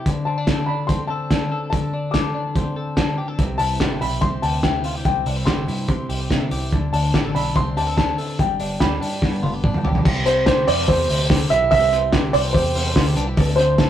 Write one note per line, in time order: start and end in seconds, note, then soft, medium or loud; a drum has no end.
0.00 0.27 C4 medium
0.00 0.10 E4 medium
0.00 0.10 G4 medium
0.06 1.71 D3 medium
0.06 kick medium
0.06 closed hi-hat medium
0.25 0.38 C4 medium
0.25 0.65 A5 medium
0.38 0.67 D4 soft
0.47 1.09 A4 medium
0.47 kick medium
0.47 snare loud
0.47 closed hi-hat medium
0.66 1.29 D4 medium
0.66 0.89 B5 medium
0.87 2.55 C4 medium
0.87 1.10 C6 medium
0.87 kick medium
0.87 closed hi-hat medium
1.07 1.50 A4 medium
1.07 1.68 A5 medium
1.31 1.92 D4 medium
1.31 kick loud
1.31 snare medium
1.31 closed hi-hat medium
1.52 2.13 A4 medium
1.70 3.39 D3 medium
1.70 2.10 A5 medium
1.70 kick medium
1.70 closed hi-hat medium
1.94 2.33 D4 medium
2.11 2.75 A4 medium
2.11 3.13 D6 medium
2.11 kick medium
2.11 snare medium
2.11 closed hi-hat medium
2.34 2.96 D4 medium
2.56 4.21 C4 medium
2.56 kick loud
2.56 closed hi-hat medium
2.76 3.18 A4 medium
2.97 3.43 D4 medium
2.97 kick loud
2.97 snare medium
2.97 closed hi-hat medium
3.18 3.28 G4 medium
3.28 3.43 A4 soft
3.39 3.57 C2 medium
3.39 5.05 C3 medium
3.39 kick medium
3.39 closed hi-hat medium
3.58 3.78 C2 medium
3.58 4.00 E4 medium
3.58 4.02 A5 loud
3.58 open hi-hat medium
3.80 3.98 G1 medium
3.80 4.42 G4 medium
3.80 kick medium
3.80 snare loud
3.80 closed hi-hat medium
4.01 4.19 B1 medium
4.01 4.63 E4 medium
4.01 4.23 B5 medium
4.01 open hi-hat medium
4.21 4.40 C2 medium
4.21 5.89 C4 medium
4.21 4.41 C6 medium
4.21 kick medium
4.21 closed hi-hat medium
4.42 5.02 D2 medium
4.42 4.84 G4 medium
4.42 4.62 A5 medium
4.42 open hi-hat medium
4.63 5.26 E4 medium
4.63 5.04 G5 medium
4.63 kick loud
4.63 snare medium
4.63 closed hi-hat medium
4.84 4.95 F4 medium
4.84 open hi-hat medium
4.95 5.46 G4 medium
5.05 5.23 C2 medium
5.05 6.72 C3 medium
5.05 5.44 G5 medium
5.05 kick medium
5.05 closed hi-hat medium
5.26 5.44 C2 medium
5.26 5.37 D4 medium
5.26 open hi-hat medium
5.37 5.67 E4 soft
5.45 5.65 G1 medium
5.45 6.08 G4 medium
5.45 6.46 C6 medium
5.45 kick medium
5.45 snare medium
5.45 closed hi-hat medium
5.68 5.89 G2 medium
5.68 6.30 E4 medium
5.68 open hi-hat medium
5.89 6.06 C3 medium
5.89 6.77 C4 medium
5.89 kick medium
5.89 closed hi-hat medium
6.09 6.27 C2 medium
6.09 6.50 G4 medium
6.09 open hi-hat medium
6.31 6.48 C3 medium
6.31 6.76 E4 medium
6.31 kick loud
6.31 snare loud
6.31 closed hi-hat medium
6.51 6.72 C2 medium
6.51 6.76 G4 medium
6.51 open hi-hat medium
6.72 6.90 D2 medium
6.72 8.39 D3 medium
6.72 kick medium
6.72 closed hi-hat medium
6.93 7.11 D2 medium
6.93 7.35 D4 medium
6.93 7.36 A5 medium
6.93 open hi-hat medium
7.14 7.32 A1 medium
7.14 7.25 G4 medium
7.14 kick medium
7.14 snare loud
7.14 closed hi-hat medium
7.25 7.76 A4 medium
7.35 7.53 B1 medium
7.35 7.98 D4 medium
7.35 7.56 B5 medium
7.35 open hi-hat medium
7.56 7.77 C2 medium
7.56 8.43 C4 medium
7.56 7.77 C6 medium
7.56 kick loud
7.56 closed hi-hat medium
7.77 8.12 D2 medium
7.77 7.87 G4 medium
7.77 7.96 A5 medium
7.77 open hi-hat medium
7.87 8.17 A4 medium
7.97 8.43 D4 medium
7.97 8.40 A5 medium
7.97 kick loud
7.97 snare medium
7.97 closed hi-hat medium
8.18 8.43 A4 medium
8.18 open hi-hat medium
8.39 8.57 G1 medium
8.39 10.05 G2 medium
8.39 8.82 G5 medium
8.39 kick medium
8.39 closed hi-hat medium
8.60 8.77 G1 loud
8.60 9.00 D4 medium
8.60 open hi-hat medium
8.80 8.98 D2 medium
8.80 9.42 G4 medium
8.80 9.80 B5 medium
8.80 kick loud
8.80 snare loud
8.80 closed hi-hat medium
9.01 9.19 G2 medium
9.01 9.62 D4 medium
9.01 open hi-hat medium
9.22 9.40 G2 medium
9.22 10.09 B3 medium
9.22 kick loud
9.22 snare soft
9.43 9.60 G1 medium
9.43 9.54 F4 medium
9.43 high tom medium
9.54 9.83 G4 soft
9.64 9.86 G2 medium
9.64 10.09 D4 medium
9.64 kick loud
9.64 mid tom medium
9.74 mid tom medium
9.84 10.02 B1 medium
9.84 10.46 G4 medium
9.84 floor tom medium
9.95 floor tom medium
10.05 10.64 C2 medium
10.05 11.70 C3 medium
10.05 kick loud
10.05 crash loud
10.26 10.67 C4 medium
10.26 10.44 C5 medium
10.26 hi-hat pedal medium
10.26 open hi-hat medium
10.46 10.87 G4 medium
10.46 10.68 C5 medium
10.46 kick loud
10.46 snare loud
10.46 hi-hat pedal medium
10.46 open hi-hat medium
10.67 10.85 F2 loud
10.67 11.08 C4 medium
10.67 10.89 D5 medium
10.67 hi-hat pedal medium
10.67 open hi-hat medium
10.88 11.06 E2 medium
10.88 11.29 G4 medium
10.88 11.52 C5 medium
10.88 kick loud
10.88 hi-hat pedal medium
10.88 open hi-hat medium
11.09 11.45 D2 medium
11.09 11.92 C4 medium
11.09 hi-hat pedal medium
11.09 open hi-hat medium
11.30 12.12 G4 medium
11.30 kick loud
11.30 snare loud
11.30 hi-hat pedal medium
11.30 open hi-hat medium
11.50 11.69 B1 medium
11.50 13.16 E4 medium
11.50 11.69 E5 loud
11.50 hi-hat pedal medium
11.50 open hi-hat medium
11.71 12.31 C2 loud
11.71 13.37 C3 medium
11.71 12.10 E5 loud
11.71 kick loud
11.71 hi-hat pedal medium
11.71 open hi-hat medium
11.92 12.33 C4 medium
11.92 hi-hat pedal medium
11.92 open hi-hat medium
12.13 12.53 G4 medium
12.13 kick loud
12.13 snare loud
12.13 hi-hat pedal medium
12.13 open hi-hat medium
12.33 12.52 C2 medium
12.33 12.75 C4 medium
12.33 12.38 D5 loud
12.33 hi-hat pedal medium
12.33 open hi-hat medium
12.53 12.72 E2 loud
12.53 12.96 G4 medium
12.53 13.12 C5 medium
12.53 kick loud
12.53 hi-hat pedal medium
12.53 open hi-hat medium
12.75 12.93 E2 medium
12.75 13.58 C4 medium
12.75 hi-hat pedal medium
12.75 open hi-hat medium
12.96 13.14 D2 loud
12.96 13.06 F4 medium
12.96 kick loud
12.96 snare loud
12.96 hi-hat pedal medium
12.96 open hi-hat medium
13.06 13.42 G4 medium
13.16 13.34 C2 medium
13.16 13.27 D4 medium
13.16 hi-hat pedal medium
13.16 open hi-hat medium
13.27 13.42 E4 medium
13.37 13.90 D2 loud
13.37 13.90 D3 medium
13.37 kick loud
13.37 hi-hat pedal medium
13.37 open hi-hat medium
13.56 13.90 C4 medium
13.56 13.90 C5 loud
13.56 hi-hat pedal medium
13.56 open hi-hat medium
13.78 13.90 A4 medium
13.78 kick loud
13.78 snare loud
13.78 hi-hat pedal medium
13.78 open hi-hat medium